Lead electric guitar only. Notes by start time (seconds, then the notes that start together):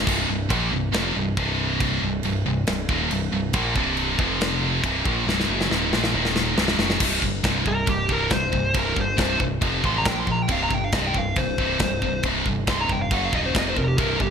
7.68 A#4
7.89 G4
8.13 A#4
8.33 C5
8.78 A#4
9.01 C5
9.85 C6
9.98 A#5
10.08 G5
10.20 C6
10.31 A#5
10.42 G5
10.52 F5
10.63 A#5
10.74 G5
10.84 F5
10.93 D#5
11.07 G5
11.18 F5
11.37 C5
12.70 C6
12.82 A#5
12.92 G5
13.02 F5
13.14 F#5
13.25 F5
13.35 D#5
13.46 C5
13.59 D#5
13.69 C5
13.77 A#4
13.88 G4
13.98 A#4
14.22 G4